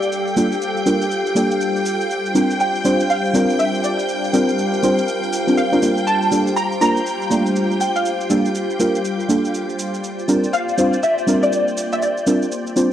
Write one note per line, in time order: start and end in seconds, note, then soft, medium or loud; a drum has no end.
0.00 0.34 G3 medium
0.00 10.00 G3 medium
0.00 0.34 A#3 medium
0.00 0.34 D4 medium
0.00 0.35 F4 medium
0.00 12.93 F4 medium
0.00 2.06 G4 medium
0.00 12.93 G4 medium
0.00 0.35 A4 loud
0.00 2.06 A4 medium
0.00 12.93 C5 medium
0.00 0.82 D5 medium
0.00 8.01 F5 medium
0.00 12.93 G5 medium
0.00 12.93 G6 medium
0.00 cabasa soft
0.12 cabasa soft
0.27 cabasa soft
0.36 0.55 G3 medium
0.36 0.55 A#3 medium
0.36 0.55 D4 medium
0.36 0.55 F4 medium
0.36 0.55 A4 loud
0.36 cabasa medium
0.52 cabasa soft
0.62 cabasa soft
0.77 cabasa soft
0.86 1.04 G3 medium
0.86 1.04 A#3 medium
0.86 1.05 D4 medium
0.86 1.05 F4 medium
0.86 1.05 A#4 loud
0.86 cabasa medium
1.02 cabasa soft
1.11 cabasa soft
1.26 cabasa soft
1.35 2.09 G3 medium
1.35 2.09 A#3 medium
1.35 2.09 D4 medium
1.35 2.09 F4 medium
1.35 2.10 A4 loud
1.35 cabasa medium
1.51 cabasa soft
1.61 cabasa soft
1.76 cabasa soft
1.86 cabasa medium
2.01 cabasa soft
2.10 6.03 D4 medium
2.10 4.07 C5 medium
2.10 cabasa soft
2.26 cabasa soft
2.35 2.53 G3 medium
2.35 2.53 C4 medium
2.35 2.53 D4 medium
2.35 2.53 F4 medium
2.35 2.54 A#4 loud
2.35 cabasa medium
2.51 cabasa soft
2.60 3.11 G5 loud
2.60 cabasa soft
2.75 cabasa soft
2.84 3.03 G3 medium
2.84 3.03 C4 medium
2.84 3.03 D4 medium
2.84 3.03 F4 medium
2.84 3.03 C5 loud
2.84 cabasa medium
3.00 cabasa soft
3.10 3.56 F5 loud
3.10 cabasa soft
3.25 cabasa soft
3.33 4.31 G3 medium
3.33 4.31 C4 medium
3.33 4.31 D4 medium
3.33 4.31 F4 medium
3.33 4.32 A#4 loud
3.33 cabasa medium
3.50 cabasa soft
3.59 3.70 E5 medium
3.59 cabasa soft
3.74 cabasa soft
3.84 4.79 D5 medium
3.84 cabasa medium
3.99 cabasa soft
4.09 6.05 A#4 medium
4.09 cabasa soft
4.24 cabasa soft
4.33 4.51 G3 medium
4.33 4.52 C4 medium
4.33 4.52 D4 medium
4.33 4.52 F4 medium
4.33 4.52 A#4 loud
4.33 cabasa medium
4.49 cabasa soft
4.59 cabasa soft
4.74 cabasa soft
4.83 5.01 G3 medium
4.83 5.01 C4 medium
4.83 5.01 D4 medium
4.83 5.01 F4 medium
4.83 5.01 C5 loud
4.83 cabasa medium
4.98 cabasa soft
5.08 cabasa soft
5.23 cabasa soft
5.33 cabasa medium
5.47 5.62 G3 medium
5.47 5.62 C4 medium
5.47 5.62 D4 medium
5.47 5.62 F4 medium
5.47 5.63 A#4 loud
5.47 cabasa soft
5.57 6.08 F5 medium
5.57 cabasa soft
5.72 5.80 G3 medium
5.72 5.80 C4 medium
5.72 5.80 D4 medium
5.72 5.80 F4 medium
5.72 5.80 A#4 loud
5.72 cabasa soft
5.82 6.29 G3 medium
5.82 6.29 A#3 medium
5.82 6.29 D4 medium
5.82 6.30 F4 medium
5.82 6.30 A#4 medium
5.82 cabasa medium
5.98 cabasa soft
6.07 10.00 F4 medium
6.07 10.00 G4 medium
6.07 6.58 A5 loud
6.07 cabasa soft
6.22 cabasa soft
6.31 6.50 G3 medium
6.31 6.50 A#3 medium
6.31 6.50 D4 medium
6.31 6.50 F4 medium
6.31 6.50 A4 loud
6.31 cabasa medium
6.47 cabasa soft
6.56 6.80 A#5 loud
6.56 cabasa soft
6.72 cabasa soft
6.81 6.99 G3 medium
6.81 6.99 A#3 medium
6.81 7.00 D4 medium
6.81 7.00 F4 medium
6.81 7.00 A#4 loud
6.81 7.77 A#5 loud
6.81 cabasa medium
6.97 cabasa soft
7.06 cabasa soft
7.22 cabasa soft
7.30 8.27 G3 medium
7.30 8.28 A3 loud
7.30 8.28 A#3 medium
7.30 8.28 D4 medium
7.30 8.28 F4 medium
7.30 cabasa medium
7.46 cabasa soft
7.56 cabasa soft
7.71 cabasa soft
7.81 7.96 G5 medium
7.81 cabasa medium
7.96 8.91 F5 medium
7.96 cabasa soft
8.05 10.02 F5 medium
8.05 cabasa soft
8.21 cabasa soft
8.30 8.48 G3 medium
8.30 8.48 A#3 medium
8.30 8.48 D4 medium
8.30 8.48 F4 medium
8.30 8.49 A4 loud
8.30 cabasa medium
8.45 cabasa soft
8.55 cabasa soft
8.70 cabasa soft
8.79 8.98 G3 medium
8.79 8.98 A#3 medium
8.79 8.98 D4 medium
8.79 8.98 F4 medium
8.79 8.98 A#4 loud
8.79 cabasa medium
8.95 cabasa soft
9.05 cabasa soft
9.20 cabasa soft
9.28 10.02 G3 medium
9.28 10.02 A#3 medium
9.28 10.03 D4 medium
9.28 10.03 F4 medium
9.28 10.03 A4 loud
9.28 cabasa medium
9.45 cabasa soft
9.54 cabasa soft
9.69 cabasa soft
9.79 cabasa medium
9.94 cabasa soft
10.04 12.93 A#3 medium
10.04 12.93 F4 medium
10.04 12.93 C5 medium
10.04 12.93 D5 medium
10.04 cabasa soft
10.19 cabasa soft
10.28 10.46 G3 medium
10.28 10.47 C4 medium
10.28 10.47 D4 medium
10.28 10.47 F4 medium
10.28 10.47 A#4 loud
10.28 cabasa medium
10.44 cabasa soft
10.53 11.04 F5 loud
10.53 cabasa soft
10.69 cabasa soft
10.78 10.96 G3 medium
10.78 10.96 C4 medium
10.78 10.96 D4 medium
10.78 10.96 F4 medium
10.78 10.97 C5 loud
10.78 cabasa medium
10.93 cabasa soft
11.03 11.44 E5 loud
11.03 cabasa soft
11.18 cabasa soft
11.27 12.24 G3 medium
11.27 12.24 C4 medium
11.27 12.24 D4 medium
11.27 12.25 F4 medium
11.27 12.25 A#4 loud
11.27 cabasa medium
11.43 11.89 D5 loud
11.43 cabasa soft
11.53 cabasa soft
11.68 cabasa soft
11.77 cabasa medium
11.93 12.02 E5 medium
11.93 cabasa soft
12.02 12.93 D5 medium
12.02 cabasa soft
12.17 cabasa soft
12.26 12.45 G3 medium
12.26 12.45 C4 medium
12.26 12.45 D4 medium
12.26 12.45 F4 medium
12.26 12.45 A#4 loud
12.26 cabasa medium
12.42 cabasa soft
12.52 cabasa soft
12.67 cabasa soft
12.76 12.93 G3 medium
12.76 12.93 C4 medium
12.76 12.93 D4 medium
12.76 12.93 F4 medium
12.76 12.93 C5 loud
12.76 cabasa medium